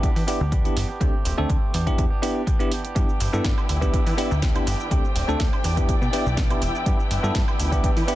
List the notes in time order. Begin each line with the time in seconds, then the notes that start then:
0.02 E3 B3 D4 G4, kick, closed hi-hat
0.15 E3 B3 D4 G4, open hi-hat
0.27 E3 B3 D4 E4 G4, open hi-hat
0.40 D2 B3 D4 G4
0.51 E3 B3 D4 G4, kick, closed hi-hat
0.65 B3 D4 E4 G4, closed hi-hat
0.76 G1 E3 B3 D4 G4, open hi-hat
0.88 B3 D4 G4
1.00 D2 A3 C4 D4 G4, kick, closed hi-hat
1.24 D1 A3 C4 G4, open hi-hat
1.37 D2 A3 C4 D4 G4 A4
1.49 D2 A3 C4 G4, kick, closed hi-hat
1.73 E2 E3 B3 D4 G4, open hi-hat
1.86 B3 D4 E4 G4, kick, closed hi-hat
1.98 E2, kick, closed hi-hat
2.10 B3 D4 G4
2.22 E3 B3 D4 E4 G4, open hi-hat
2.35 B3 D4 G4
2.47 E3 B3 D4 G4, kick, closed hi-hat
2.59 B3 D4 E4 G4, closed hi-hat
2.71 E3 B3 D4 G4, open hi-hat
2.84 B3 D4 G4, closed hi-hat
2.95 G2 E3 B3 D4 E4 G4 B4 G5, kick, closed hi-hat, cabasa
3.09 cabasa
3.20 G1 E3 B3 D4 G4, open hi-hat, cabasa
3.33 G2 B3 D4 E4 G4 A4, cabasa
3.44 G2 E3 B3 D4 G4, kick, snare, closed hi-hat, cabasa
3.58 cabasa, high woodblock
3.69 D2, open hi-hat, cabasa
3.81 B3 D4 E4 G4, kick, closed hi-hat, cabasa
3.92 E3 B3 D4 G4, kick, closed hi-hat, cabasa
4.05 E3 B3 D4 G4, open hi-hat, cabasa
4.17 E3 B3 D4 E4 G4, open hi-hat, cabasa
4.30 D2 B3 D4 G4, cabasa
4.42 E3 B3 D4 G4, kick, snare, closed hi-hat, cabasa
4.55 B3 D4 E4 G4, closed hi-hat, cabasa, high woodblock
4.65 G1 E3 B3 D4 G4, open hi-hat, cabasa
4.80 cabasa
4.90 D2 A3 C4 D4 G4 C5, kick, closed hi-hat, cabasa
5.04 cabasa
5.14 D1 A3 C4 G4, open hi-hat, cabasa
5.27 D2 A3 C4 D4 G4 A4, cabasa
5.39 D2 A3 C4 G4, kick, snare, closed hi-hat, cabasa
5.53 cabasa, high woodblock
5.63 E2 E3 B3 D4 E4 G4 D5, open hi-hat, cabasa
5.77 B3 D4 E4 G4, kick, closed hi-hat, cabasa
5.89 kick, closed hi-hat, cabasa
6.01 B2 B3 D4 G4, cabasa
6.12 E3 B3 D4 E4 G4, open hi-hat, cabasa
6.25 B1 B3 D4 G4, cabasa
6.37 E3 B3 D4, kick, snare, closed hi-hat, cabasa
6.50 B3 D4 E4 G4, closed hi-hat, cabasa, high woodblock
6.61 E1 E3 B3 D4 G4, open hi-hat, cabasa
6.75 cabasa
6.86 G2 E3 B3 D4 E4 G4 B4, kick, closed hi-hat, cabasa
7.00 cabasa
7.10 G1 E3 B3 D4 G4, open hi-hat, cabasa
7.23 G2 B3 D4 E4 G4 A4, cabasa
7.35 G2 E3 B3 D4 G4, kick, snare, closed hi-hat, cabasa
7.48 cabasa, high woodblock
7.60 D2, open hi-hat, cabasa
7.72 B3 D4 E4 G4, kick, closed hi-hat, cabasa
7.83 E3 B3 D4 G4, kick, closed hi-hat, cabasa
7.96 E3 B3 D4 G4, open hi-hat, cabasa
8.07 E3 B3 D4 E4 G4, open hi-hat, cabasa